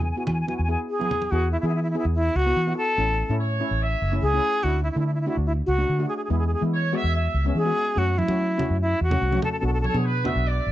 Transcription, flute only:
0.04 0.11 G#5 medium
0.11 0.18 G#5 soft
0.19 0.25 G#5 medium
0.26 0.33 G#5 soft
0.33 0.40 G#5 medium
0.41 0.48 G#5 medium
0.49 0.56 G#5 medium
0.57 0.63 G#5 medium
0.64 0.71 G#5 medium
0.71 0.79 G#5 medium
0.90 1.33 G#4 medium
1.31 1.51 F#4 medium
1.52 1.60 E4 medium
1.60 1.67 E4 medium
1.68 1.74 E4 medium
1.75 1.82 E4 medium
1.83 1.90 E4 medium
1.91 1.97 E4 medium
1.98 2.05 E4 medium
2.15 2.38 E4 loud
2.36 2.77 F#4 loud
2.77 3.36 A4 loud
4.22 4.65 G#4 loud
4.63 4.83 F#4 loud
4.83 4.91 E4 medium
4.91 4.99 E4 medium
4.99 5.06 E4 medium
5.07 5.14 E4 medium
5.14 5.20 E4 medium
5.21 5.28 E4 medium
5.28 5.36 E4 medium
5.46 5.52 E4 medium
5.66 6.06 F#4 loud
6.09 6.16 G#4 medium
6.17 6.24 G#4 medium
6.24 6.31 G#4 medium
6.32 6.38 G#4 medium
6.39 6.46 G#4 medium
6.47 6.53 G#4 medium
6.54 6.62 G#4 medium
7.56 8.00 G#4 loud
7.98 8.20 F#4 loud
8.18 8.80 E4 medium
8.82 9.00 E4 loud
9.03 9.40 F#4 loud
9.44 9.50 A4 loud
9.52 9.58 A4 medium
9.60 9.65 A4 medium
9.67 9.73 A4 medium
9.73 9.80 A4 medium
9.81 9.87 A4 medium
9.88 9.95 A4 medium

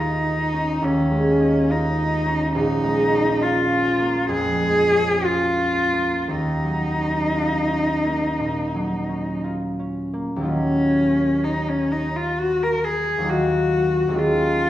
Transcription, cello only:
0.00 0.86 D#4 soft
0.84 1.72 C#4 medium
1.71 2.55 D#4 medium
2.56 3.44 D#4 medium
3.42 4.31 F4 medium
4.31 5.26 G#4 medium
5.25 6.31 F4 medium
6.30 9.46 D#4 soft
10.50 11.46 C#4 medium
11.44 11.70 D#4 soft
11.69 11.93 C#4 soft
11.92 12.18 D#4 soft
12.16 12.41 F4 soft
12.39 12.65 F#4 medium
12.63 12.86 A#4 medium
12.84 13.31 G#4 medium
13.29 14.20 F#4 medium
14.19 14.70 F4 medium

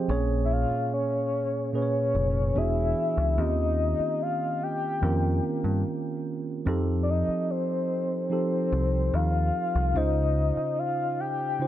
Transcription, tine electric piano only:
0.00 0.11 F3 medium
0.00 0.11 C4 medium
0.00 0.12 G4 medium
0.00 0.10 G#4 medium
0.00 0.11 C5 medium
0.00 0.11 D#5 medium
0.00 0.12 G5 medium
0.08 1.37 A#2 medium
0.08 1.38 A#3 medium
0.08 1.38 C#4 medium
0.08 1.39 G#4 medium
0.08 1.39 C#5 loud
1.73 2.55 A#2 medium
1.73 2.56 A#3 medium
1.73 2.56 C#4 medium
1.73 2.56 G#4 medium
1.73 1.81 B4 medium
1.82 2.60 C#5 medium
2.55 3.21 E3 medium
2.55 3.21 B3 medium
2.55 3.22 D4 medium
2.55 3.22 F#4 medium
2.55 3.23 G#4 medium
3.37 4.66 D#3 medium
3.37 4.67 A#3 medium
3.37 4.67 C4 medium
3.37 4.67 C#4 medium
3.37 4.67 F4 medium
3.37 4.68 G4 medium
5.01 6.31 D#3 medium
5.01 6.31 A#3 medium
5.01 6.31 C4 medium
5.01 6.32 C#4 medium
5.01 6.32 F4 medium
5.01 6.32 A#4 medium
6.66 7.95 F3 medium
6.66 7.95 C4 medium
6.66 7.96 D#4 medium
6.66 7.96 G4 medium
6.66 7.96 A4 loud
8.30 9.59 F3 medium
8.30 9.60 C4 medium
8.30 9.60 D#4 medium
8.30 9.60 G4 medium
8.30 9.61 A4 medium
9.94 11.24 C#3 medium
9.94 11.24 C#4 medium
9.94 11.24 D#4 medium
9.94 11.25 F4 medium
9.94 11.25 C5 medium
11.59 11.68 C#3 medium
11.59 11.68 C#4 medium
11.59 11.68 D#4 medium
11.59 11.68 F4 medium
11.59 11.68 C5 medium

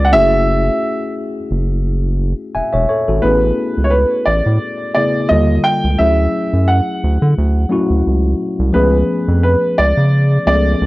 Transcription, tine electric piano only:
0.11 1.38 A3 medium
0.11 1.38 C#4 medium
0.11 1.39 E4 medium
0.11 1.39 F#4 medium
0.11 1.39 G#4 medium
2.55 2.71 E5 medium
2.55 2.72 G#5 medium
2.73 2.88 C#5 medium
2.73 2.87 E5 medium
2.89 3.07 A4 medium
2.89 3.06 C#5 medium
3.08 3.40 F#4 medium
3.08 3.40 A4 medium
3.22 4.49 A3 medium
3.22 4.49 B3 medium
3.22 4.49 C#4 soft
3.22 4.49 E4 medium
3.22 4.50 G#4 medium
4.94 5.30 C#3 medium
4.94 5.29 A3 medium
4.94 5.29 B3 medium
4.94 5.30 E4 soft
4.94 5.31 G#4 medium
5.29 5.93 D3 medium
5.29 5.92 G3 medium
5.29 5.93 A#3 medium
5.29 5.93 F4 medium
5.29 5.94 A4 medium
5.98 7.24 F#3 medium
5.98 7.25 A3 medium
5.98 7.25 C#4 medium
5.98 7.25 E4 medium
5.98 7.26 G#4 medium
7.69 8.65 F#3 medium
7.69 8.65 A3 medium
7.69 8.65 C#4 medium
7.69 8.66 E4 medium
7.69 8.66 F#4 medium
8.73 10.00 F3 medium
8.73 10.00 A3 medium
8.73 10.00 B3 medium
8.73 10.01 C#4 medium
8.73 10.01 G#4 medium
10.45 10.86 F3 medium
10.45 10.86 A3 medium
10.45 10.86 B3 medium
10.45 10.86 C#4 medium
10.45 10.55 G#4 medium
10.55 10.86 A4 medium

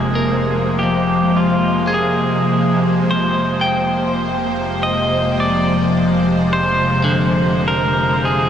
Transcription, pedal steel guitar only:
0.00 0.75 G#4 medium
0.79 1.38 G4 medium
1.37 1.96 F4 medium
1.94 2.77 G#4 medium
3.11 4.83 C5 medium
4.83 5.40 D#5 medium
5.40 6.50 D5 medium
6.53 7.71 C5 loud
7.68 8.27 A#4 loud
8.25 8.49 G#4 medium

